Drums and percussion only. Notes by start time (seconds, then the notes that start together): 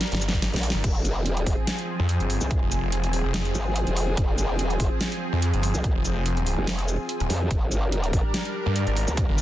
0.01 snare, closed hi-hat
0.12 snare, closed hi-hat
0.21 shaker
0.28 snare
0.33 kick
0.42 snare, closed hi-hat
0.54 snare, closed hi-hat
0.63 open hi-hat
0.70 snare
0.84 kick, closed hi-hat, crash
1.05 closed hi-hat, shaker
1.26 closed hi-hat
1.37 closed hi-hat
1.46 kick, open hi-hat
1.67 snare, closed hi-hat
1.79 closed hi-hat
2.09 closed hi-hat
2.20 closed hi-hat
2.30 open hi-hat
2.41 shaker
2.51 kick, closed hi-hat
2.71 closed hi-hat, shaker
2.92 closed hi-hat
3.04 closed hi-hat
3.13 open hi-hat
3.34 snare, closed hi-hat
3.45 closed hi-hat
3.55 shaker
3.76 closed hi-hat
3.87 closed hi-hat
3.96 open hi-hat
4.17 kick, closed hi-hat
4.38 closed hi-hat, shaker
4.59 closed hi-hat
4.70 closed hi-hat
4.80 kick, open hi-hat
5.01 snare, closed hi-hat
5.12 closed hi-hat
5.42 closed hi-hat
5.54 closed hi-hat
5.63 open hi-hat
5.74 shaker
5.84 kick, closed hi-hat
6.05 closed hi-hat, shaker
6.26 closed hi-hat
6.37 closed hi-hat
6.47 open hi-hat
6.67 snare, closed hi-hat
6.79 closed hi-hat
6.88 shaker
7.09 closed hi-hat
7.20 closed hi-hat
7.30 open hi-hat
7.51 kick, closed hi-hat
7.72 closed hi-hat, shaker
7.92 closed hi-hat
8.04 closed hi-hat
8.13 kick, open hi-hat
8.34 snare, closed hi-hat
8.45 closed hi-hat
8.76 closed hi-hat
8.87 closed hi-hat
8.96 open hi-hat
9.08 shaker
9.17 kick, closed hi-hat
9.38 closed hi-hat, shaker